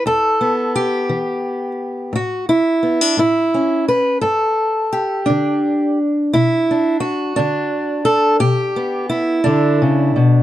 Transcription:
0.06 E2 A4
0.41 B3
0.76 G4
1.09 E3
2.13 A2 F#4
2.49 E4
2.83 B3
3.01 D4
3.17 A2 E4
3.54 C#4
3.88 B4
4.21 G2 A4
4.93 G4
5.26 D4
5.30 D3
6.33 B2 E4
6.71 D4
7.00 F#4
7.36 D3 D4
8.05 A4
8.40 B2 G4
8.76 B3
9.09 E4
9.44 D3 D4
9.82 C#3
10.16 B2

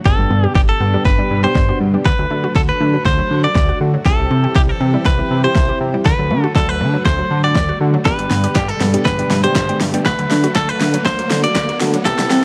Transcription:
0.05 G1 B2 D3 G3 B3 D4 G4 A4, kick, snare, riser
0.19 G1 G3
0.30 G2 B3
0.44 G4
0.55 G1 G4 D5, kick, snare
0.69 A4
0.80 G2 B3
0.93 G3 B3 D4 G4
1.05 G1 D3 B4, kick, snare
1.19 G3 B3 D4 G4
1.31 G2
1.44 B3 D4 G4 C5
1.55 G1 D5, kick, snare
1.69 B3 D4 F#4 G4
1.81 G2
1.94 G3 B3 D4 G4
2.05 D2 D3 F#3 A3 F#4 B4, kick, snare
2.19 D2 F#3
2.30 D3 A3
2.44 F#4
2.56 D2 A4 D5, kick, snare
2.69 B4
2.81 D3 A3
2.94 F#3
3.05 D2 D3 C5, kick, snare
3.19 F#3
3.31 D3
3.44 F#4 D5
3.55 D2 D5, kick, snare
3.69 F#4
3.80 D3 A3 D4 F#4
3.94 F#3
4.05 C2 E3 G3 C4 E4 G4 A4, kick, snare
4.19 C2 G3
4.31 C3 C4
4.44 G4
4.56 C2 G4 E5, kick, snare
4.69 A4
4.81 C3 C4
4.94 G3 C4 E4 G4
5.05 C2 E3 B4, kick, snare
5.19 G3 C4 E4 G4
5.31 C3
5.44 C4 E4 G4 C5
5.55 C2 E5, kick, snare
5.69 C4 E4 G4
5.81 C3
5.94 G3 C4 E4 G4
6.06 D2 D3 F#3 A3 F#4 B4, kick, snare
6.19 D2 F#3
6.31 D3 A3
6.44 F#4
6.56 D2 A4 D5, kick, snare
6.69 B4
6.81 D3 A3
6.94 F#3
7.05 D2 D3 C5, kick, snare
7.19 F#3
7.31 D3
7.44 F#4 D5
7.55 D2 D5, kick, snare
7.69 F#4
7.80 D3 A3 D4 F#4
7.94 F#3
8.05 G1 B2 D3 G3 B3 D4 G4 B4, kick, snare
8.19 G1 G3, closed hi-hat
8.31 G2 B3, snare, open hi-hat
8.44 G4, closed hi-hat
8.55 G1 G4 D5, kick, snare, clap
8.68 A4, closed hi-hat
8.80 G2 B3, snare, open hi-hat
8.94 G3 B3 D4 G4, closed hi-hat
9.05 G1 D3 B4, kick, snare
9.19 G3 B3 D4 G4, closed hi-hat
9.30 G2, snare, open hi-hat
9.44 B3 D4 G4 C5, closed hi-hat
9.55 G1 D5, kick, snare, clap
9.69 B3 D4 G4, closed hi-hat
9.80 G2, snare, open hi-hat
9.94 G3 B3 D4 G4, closed hi-hat
10.06 D2 D3 F#3 A3 F#4 B4, kick, snare
10.19 D2 F#3, closed hi-hat
10.31 D3 A3, snare, open hi-hat
10.44 F#4, closed hi-hat
10.55 D2 A4 D5, kick, snare, clap
10.69 B4, closed hi-hat
10.81 D3 A3, snare, open hi-hat
10.94 F#3, closed hi-hat
11.05 D2 D3 C5, kick, snare
11.19 F#3, closed hi-hat
11.30 D3, snare, open hi-hat
11.44 F#4 D5, closed hi-hat
11.55 D2 D5, kick, snare, clap
11.69 F#4, closed hi-hat
11.80 D3 A3 D4 F#4, snare, open hi-hat
11.94 F#3, closed hi-hat
12.05 C2 E3 G3 C4 E4 G4 A4, kick, snare, shaker
12.19 C2 G3, snare, closed hi-hat, shaker
12.30 C3 C4, snare, open hi-hat, shaker

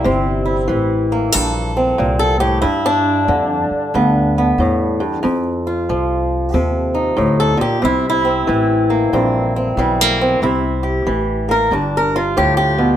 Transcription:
Already playing: G3 E4
0.04 G1 C3 C4
0.46 E4
0.68 A1 E3
1.12 A#3
1.32 A#1 G2 A4
1.77 C4
1.98 C2 A#2
2.19 A4
2.40 A2 G4
2.61 G2 E4
2.86 D4
3.28 F2 D3
3.71 muted upright bass stroke
3.94 D2 G2 B3
4.38 B3
4.58 E2 A2
5.00 G2
5.23 F2
5.67 F4
5.89 C2 F3
6.53 D#2 C3 A4
6.95 D#4
7.17 D2 A2
7.40 A4
7.57 A#2 G4, muted upright bass stroke
7.82 C2 C3 E4
8.10 E4
8.25 C4
8.47 A1 E3
8.90 A#3
9.13 A#1 G2 C4
9.56 C4
9.77 B1 E3 G3
10.01 A#3
10.21 C4
10.42 C2 C3 E4
10.83 G4
11.06 A1 E3
11.49 A#3 A#4
11.71 G1 G2 D4
11.97 A#4
12.16 F4
12.37 D2 A2 G4
12.57 G4
12.78 B2

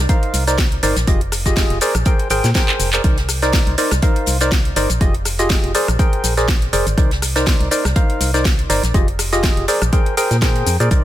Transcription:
0.09 D#4 A#4 C5 F5, kick, closed hi-hat, shaker
0.23 closed hi-hat
0.34 C2, closed hi-hat, open hi-hat, shaker
0.47 D#4 A#4 C5 D5, snare, closed hi-hat, shaker
0.58 kick, snare, closed hi-hat, shaker
0.72 closed hi-hat
0.83 G1 D#4 A#4 C5 D5, snare, closed hi-hat, open hi-hat, shaker
0.96 A#1, snare, closed hi-hat, shaker
1.07 F1 F4 G4 G#4 D#5, kick, closed hi-hat, shaker
1.21 closed hi-hat
1.32 cross-stick, closed hi-hat, open hi-hat, shaker
1.45 F4 G4 G#4 D#5, kick, snare, closed hi-hat, shaker
1.56 kick, snare, closed hi-hat, shaker
1.70 F1, closed hi-hat
1.81 G#4 A#4 C5 D5, snare, closed hi-hat, open hi-hat, shaker
1.95 A#1, cross-stick, closed hi-hat, shaker
2.05 G#4 A#4 C5 G5, kick, closed hi-hat, shaker
2.19 closed hi-hat
2.30 G#1 G#4 A#4 C5 G5, closed hi-hat, open hi-hat, shaker
2.44 A#2, snare, closed hi-hat, shaker
2.54 G#4 A#4 C5 G5, kick, snare, closed hi-hat, shaker
2.69 clap, closed hi-hat
2.80 F1, closed hi-hat, open hi-hat, shaker
2.93 G#4 A#4 C5 D5, clap, closed hi-hat, shaker
3.04 C2 D#4 A#4 C5, kick, closed hi-hat, shaker
3.17 snare, closed hi-hat
3.29 cross-stick, closed hi-hat, open hi-hat, shaker
3.42 D#4 A#4 C5 D5, snare, closed hi-hat, shaker
3.53 kick, snare, closed hi-hat, shaker
3.67 C2, closed hi-hat
3.78 D#4 A#4 C5 D5, closed hi-hat, open hi-hat, shaker
3.91 C2, cross-stick, snare, closed hi-hat, shaker
4.02 D#4 A#4 C5 F5, kick, closed hi-hat, shaker
4.16 closed hi-hat
4.26 C2, closed hi-hat, open hi-hat, shaker
4.40 D#4 A#4 C5 D5, snare, closed hi-hat, shaker
4.52 kick, snare, closed hi-hat, shaker
4.65 closed hi-hat
4.76 G1 D#4 A#4 C5 D5, snare, closed hi-hat, open hi-hat, shaker
4.89 A#1, snare, closed hi-hat, shaker
5.01 F1 F4 G4 G#4 D#5, kick, closed hi-hat, shaker
5.14 closed hi-hat
5.25 cross-stick, closed hi-hat, open hi-hat, shaker
5.38 F4 G4 G#4 D#5, snare, closed hi-hat, shaker
5.49 kick, snare, closed hi-hat, shaker
5.64 F1, closed hi-hat
5.74 G#4 A#4 C5 D5, snare, closed hi-hat, open hi-hat, shaker
5.88 A#1, cross-stick, closed hi-hat, shaker
5.99 G#4 A#4 C5 G5, kick, closed hi-hat, shaker
6.13 closed hi-hat
6.24 A#1, closed hi-hat, open hi-hat, shaker
6.37 G#4 A#4 C5 D5, snare, closed hi-hat, shaker
6.48 kick, snare, closed hi-hat, shaker
6.62 closed hi-hat
6.73 F1 G#4 A#4 C5 D5, closed hi-hat, open hi-hat, shaker
6.87 G#1, closed hi-hat, shaker
6.97 C2 D#4 A#4 C5 D5, kick, closed hi-hat, shaker
7.11 snare, closed hi-hat
7.22 cross-stick, closed hi-hat, open hi-hat, shaker
7.35 D#4 A#4 C5 D5, snare, closed hi-hat, shaker
7.46 kick, snare, closed hi-hat, shaker
7.60 C2, closed hi-hat
7.71 D#4 A#4 C5 D5, closed hi-hat, open hi-hat, shaker
7.85 C2, cross-stick, snare, closed hi-hat, shaker
7.96 D#4 A#4 C5 F5, kick, closed hi-hat, shaker
8.10 closed hi-hat
8.21 C2, closed hi-hat, open hi-hat, shaker
8.34 D#4 A#4 C5 D5, snare, closed hi-hat, shaker
8.45 kick, snare, closed hi-hat, shaker
8.59 closed hi-hat
8.70 G1 D#4 A#4 C5 D5, snare, closed hi-hat, open hi-hat, shaker
8.83 A#1, snare, closed hi-hat, shaker
8.94 F1 F4 G4 G#4 D#5, kick, closed hi-hat, shaker
9.08 closed hi-hat
9.19 cross-stick, closed hi-hat, open hi-hat, shaker
9.32 F4 G4 G#4 D#5, snare, closed hi-hat, shaker
9.43 kick, snare, closed hi-hat, shaker
9.57 F1, closed hi-hat
9.68 G#4 A#4 C5 D5, snare, closed hi-hat, open hi-hat, shaker
9.82 A#1, cross-stick, closed hi-hat, shaker
9.92 G#4 A#4 C5 G5, kick, closed hi-hat, shaker
10.06 closed hi-hat
10.17 G#4 A#4 C5 G5, closed hi-hat, open hi-hat, shaker
10.31 A#2, snare, closed hi-hat, shaker
10.42 G#4 A#4 C5 G5, kick, snare, closed hi-hat, shaker
10.56 closed hi-hat
10.66 F2, closed hi-hat, open hi-hat, shaker
10.80 A#2 G#4 A#4 C5 D5, closed hi-hat, shaker
10.91 C2 D#4 A#4 C5, kick, closed hi-hat, shaker

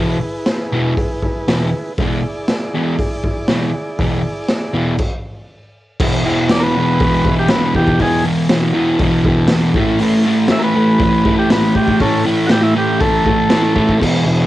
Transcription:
Already playing: E2 B2 E3 E4 G#4 B4
0.46 snare, open hi-hat
0.72 E2 B2 E3
0.97 kick, open hi-hat
1.23 kick
1.48 E2 B2 E3, snare, open hi-hat
1.98 E2 B2 E3 E4 G#4 D5, kick, open hi-hat
2.48 snare, open hi-hat
2.74 E2 B2 E3
2.99 kick, open hi-hat
3.24 kick
3.48 E2 B2 E3, snare, open hi-hat
3.99 E2 B2 E3, kick, open hi-hat
4.48 snare, open hi-hat
4.73 E2 B2 E3
4.98 kick, crash
6.00 E2 B2 E3, kick, crash
6.25 E2 B2 E3
6.50 E2 B2 E3 D5, snare, open hi-hat
6.60 A#4 B4
6.77 E2 B2 E3
7.00 E2 B2 E3, kick, open hi-hat
7.25 E2 B2 E3, kick
7.39 G4
7.49 E2 B2 E3 B4, snare, open hi-hat
7.75 E2 B2 E3 G4, kick
7.87 kick
7.99 E2 B2 E3 G#4, kick, open hi-hat
8.24 E2 B2 E3
8.49 E2 B2 E3, snare, open hi-hat
8.74 E2 B2 E3
8.99 E2 B2 E3, kick, open hi-hat
9.25 E2 B2 E3, kick
9.48 E2 B2, snare, open hi-hat
9.52 E3
9.74 A2 E3 A3, kick
9.99 A2 E3 A3, open hi-hat
10.25 A2 E3 A3
10.48 A2 E3 A3 E5, snare, open hi-hat
10.59 A#4
10.64 B4
10.75 A2 E3 A3
10.99 A2 E3 A3, kick, open hi-hat
11.25 A2 E3 A3, kick
11.39 G4
11.50 A2 E3 A3 B4, snare, open hi-hat
11.75 A2 E3 A3 G4, kick
11.88 kick
12.00 A2 E3 A3 C#4 A4, kick, open hi-hat
12.25 A2 E3 A3
12.47 F#4, snare, open hi-hat
12.51 A2 E3 A3 G4
12.63 E4
12.75 A2 E3 A3 G4
13.00 A2 E3 A3 A4, kick, open hi-hat
13.26 A2 E3 A3, kick
13.50 A2 E3 A3, snare, open hi-hat
13.75 A2 E3 A3, kick
13.89 kick
13.97 E2 B2 E4 G#4
14.01 E3 B4, kick, crash
14.25 E2 B2 E3

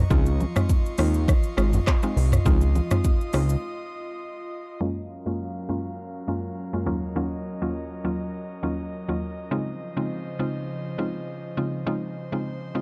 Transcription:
Already playing: D#5 C#6
0.10 C#2 G#3 C4 D#4 F4 C6, kick, low conga, shaker
0.26 shaker
0.40 high bongo, low conga, shaker
0.56 G#3 C4 D#4 F4, cross-stick, mid tom, low bongo, shaker
0.69 kick, high bongo, shaker
0.86 shaker
0.98 D#2 G#3 C4 D#4 F4, cross-stick, open hi-hat, shaker
1.14 shaker
1.28 kick, cross-stick, low conga, shaker
1.43 shaker
1.57 G#1 G#3 C4 D#4 F4, cross-stick, shaker
1.73 mid tom, low bongo, shaker
1.87 kick, cross-stick, clap, high bongo, shaker
2.03 G#3 C4 D#4 F4, shaker
2.16 C2, open hi-hat, low bongo, shaker
2.32 cross-stick, mid tom, shaker
2.45 C#2 G#3 C4 D#4 F4 D#6, kick, low conga, shaker
2.61 shaker
2.75 high bongo, low bongo, low conga, shaker
2.91 G#3 C4 D#4 F4, cross-stick, mid tom, low bongo, shaker
3.04 kick, high bongo, shaker
3.21 shaker
3.33 C#2 G#3 C4 D#4 F4, cross-stick, open hi-hat, shaker
3.49 shaker
4.81 F#2 F#3 G#3 A#3 C#4 F4 A#4 F5
5.26 F#2 G#3 A#3 C#4 F4
5.69 F#2 G#3 A#3 C#4 F4
6.28 F#2 G#3 A#3 C#4 F4
6.73 F#2 G#3 A#3 C#4 F4
6.86 D#2 F#3 A#3 C#4 F4 D#5
7.16 D#2 F#3 A#3 C#4 F4
7.62 D#2 F#3 A#3 C#4 F4
8.04 D#2 F#3 A#3 C#4 F4
8.63 D#2 F#3 A#3 C#4 F4
9.08 D#2 F#3 A#3 C#4 F4
9.51 C#3 F3 G#3 C4 D#4 F4 C5
9.97 C#3 G#3 C4 D#4 F4
10.39 C#3 G#3 C4 D#4 F4
10.98 C#3 G#3 C4 D#4 F4
11.57 C#3 G#3 C4 D#4 F4
11.87 C#3 G#3 C4 D#4 F4 C5
12.32 C#3 G#3 C4 D#4 F4
12.75 C#3 G#3 C4 D#4 F4

